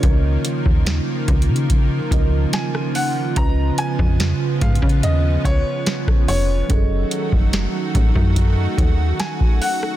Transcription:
Already playing: C#3 D#3 F3 A#3 C#4 F4 A#4 C#5 D#5
0.03 C#2, kick, closed hi-hat
0.45 closed hi-hat
0.66 D#2, kick
0.86 snare, closed hi-hat
1.28 C#2, kick, closed hi-hat
1.42 closed hi-hat
1.49 C#3
1.56 closed hi-hat
1.70 kick, closed hi-hat
2.11 C#2 C#3 F3 C#4 A#4 D#5, kick, closed hi-hat
2.53 G#5, snare, closed hi-hat
2.75 cross-stick
2.95 F#5, open hi-hat
3.35 C#2 C#3 B3 C#4 F4 B4 A#5, kick, closed hi-hat
3.40 D#5
3.78 G#5, closed hi-hat
3.99 F2, kick
4.20 snare, closed hi-hat
4.61 G#2 F5, kick, closed hi-hat
4.75 closed hi-hat
4.82 C#3, kick
4.89 closed hi-hat
5.03 D#2 D#5, closed hi-hat
5.45 C#2 C#5, kick, closed hi-hat
5.86 snare, closed hi-hat
6.07 kick, cross-stick
6.28 F1 C#5, open hi-hat
6.68 F#1 D#3 F#3 A3 C#4 F#4 G#4 A4, kick, closed hi-hat
6.73 D#5
7.11 closed hi-hat
7.32 F#1, kick
7.53 snare, closed hi-hat
7.95 A1, kick, closed hi-hat
8.15 F#2, kick
8.36 kick, closed hi-hat
8.78 D#2, kick, closed hi-hat
9.20 G#5, snare, closed hi-hat
9.40 kick
9.62 F#5, open hi-hat
9.83 cross-stick

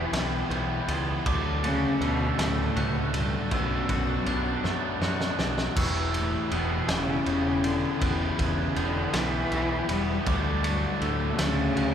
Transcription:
Already playing: E2 E3 G3 B3 E4 G4 G6
0.12 B1 E3 G3 B3 E4 G4, snare, ride
0.49 B1 E3 G3 B3 E4 G4 G6, ride
0.87 C#2 G3 B3 E4, ride
1.25 D2 D3 F#3 A3 D4 F#4 D6, kick, ride
1.63 C#3 F#3 A3 D4 F#4, ride
2.00 D2 B2 D3 F#3 A3 D4 F#4 E6, ride
2.38 D2 A2 D3 F#3 A3 D4 F#4, snare, ride
2.75 C#2 D3 F#3 A3 D4 F#4 F#6, ride
3.13 G2 F#3 A3 D4, ride
3.51 B1 F#2 B2 F#3 B3 D4 F#4 E6, kick, ride
3.89 B1 F#3 B3 D4 F#4, kick, ride
4.26 B1 B2 F#3 B3 D4 F#4 F#6, ride
4.64 F#2 B2 F#3 A3 B3 D4 F#4, snare
5.01 F#2 B2 F#3 B3 D4 F#4 F#6, snare
5.21 snare
5.38 B1 F#3 B3 D4, snare
5.58 snare
5.75 E1 E2 E3 G3 B3 E4 G4 E6, kick, crash
6.13 A2 G3 B3 E4, ride
6.51 E1 B2 E3 G3 B3 E4 G4 F#6, ride
6.88 E1 C#3 E3 G3 B3 E4 G4, snare, ride
7.25 E1 C#3 E3 G3 B3 E4 G4 G6, ride
7.63 D3 G3 B3 E4, ride
8.00 E1 E2 E3 G3 B3 E4 G4 F#6, kick, ride
8.38 E1 C#3 G3 B3 E4, kick, ride
8.76 E1 D3 E3 G3 B3 E4 G4 G6, ride
9.13 B1 E3 G3 B3 E4 G4, snare, ride
9.51 B1 E3 G3 B3 E4 G4 G6, ride
9.88 E1 G3 B3 E4, ride
10.26 D2 D3 F#3 A3 D4 F#4 D6, kick, ride
10.63 G2 F#3 A3 D4 F#4, ride
11.01 D2 A2 D3 F#3 A3 D4 F#4 E6, ride
11.38 D2 C#3 D3 F#3 A3 D4 F#4, snare, ride
11.76 D2 D3 F#3 A3 D4 F#4 F#6, ride

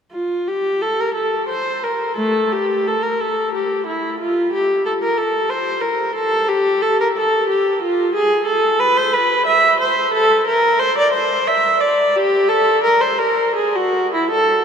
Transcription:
0.12 F4
0.48 G4
0.82 A4
1.00 A#4
1.14 A4
1.48 C5
1.83 A#4
2.16 A3 A4
2.52 G4
2.87 A4
3.03 A#4
3.20 A4
3.54 G4
3.86 E4
4.20 F4
4.53 G4
4.86 A4
5.03 A#4
5.18 A4
5.50 C5
5.81 A#4
6.15 A4
6.48 G4
6.82 A4
7.01 A#4
7.17 A4
7.49 G4
7.82 F4
8.14 G#4
8.46 A4
8.80 B4
8.97 C5
9.13 B4
9.46 E5
9.79 C5
10.14 A4
10.47 A#4
10.79 C5
10.98 D5
11.13 C5
11.47 E5
11.81 D5
12.16 G4
12.49 A4
12.83 A#4
13.01 C5
13.18 A#4
13.55 G#4
13.76 F#4
14.14 E4
14.30 A4

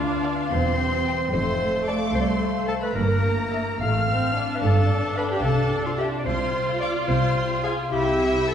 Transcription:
Already playing: D2 D3 B3 D4 F4 F5
0.09 B4
0.23 F4 F5
0.37 F5
0.51 E1 E2 E3 C4 C5 C6
0.65 G3
0.79 G4
0.94 C5
1.07 G4 G5
1.20 G5
1.32 F1 F2 F3 A3 C5 C6
1.48 F4
1.75 A4
1.87 D5 F5 A5 D6
2.02 C6
2.13 C2 C5 A5 C6
2.21 D5
2.28 C5 C6
2.42 F5
2.55 C5
2.68 F4 A4 A5
2.80 A3 B4 B5
2.95 G1 G2 A#3 A#4 A#5
3.09 A#3
3.23 E4
3.38 E5
3.52 A#4 E5
3.67 E5
3.80 A1 A2 A3 F5 F6
3.94 C4
4.09 C4 F4
4.23 C5
4.35 D4 F4 F5
4.49 F5
4.56 B4
4.62 G1 G2 A4 A5
4.76 B3
4.90 F4
5.17 B4 F5 B5
5.30 G4 F5 G5
5.43 C2 C3 A4 A5
5.58 C4
5.72 E4
5.86 F4 C5 F5
5.98 E4 G4 E5 G5
6.13 E5
6.19 D5
6.26 C2 C3 F4 C5 C6
6.40 C4
6.54 F4
6.68 A4
6.80 C5 D5 F5 D6
6.95 F5
7.08 C2 C3 C5 C6
7.22 C4
7.36 F4
7.49 G#4
7.63 G#4 C5 F5 G#5
7.77 F5
7.90 C2 C3 E4 G4 E5 G5
8.20 E4
8.34 G4
8.48 A4 C5 A5

